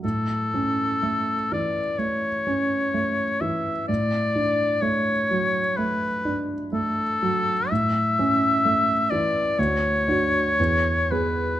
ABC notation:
X:1
M:4/4
L:1/8
Q:1/4=63
K:A
V:1 name="Oboe"
A3 d c3 e | d2 c2 B z A2 | e3 d c3 B |]
V:2 name="Grand piano"
A,, C A, E, A, C A, E, | A,, D A, F, A, D A, F, | A,, C A, E, D,, [DF] E,, [B,G] |]